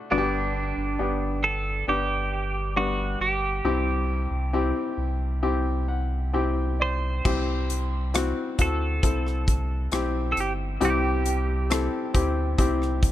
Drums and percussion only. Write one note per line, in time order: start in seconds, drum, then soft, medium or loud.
7.25 kick medium
7.25 crash medium
7.70 closed hi-hat medium
8.14 cross-stick medium
8.14 closed hi-hat medium
8.59 kick medium
8.59 closed hi-hat medium
9.03 kick medium
9.03 closed hi-hat medium
9.27 cross-stick soft
9.48 kick medium
9.48 closed hi-hat medium
9.92 cross-stick medium
9.92 closed hi-hat medium
10.37 closed hi-hat medium
10.81 closed hi-hat medium
11.26 closed hi-hat medium
11.71 cross-stick loud
11.71 closed hi-hat medium
12.15 kick medium
12.15 closed hi-hat medium
12.59 kick medium
12.59 closed hi-hat medium
12.82 cross-stick soft
13.03 kick medium
13.03 closed hi-hat medium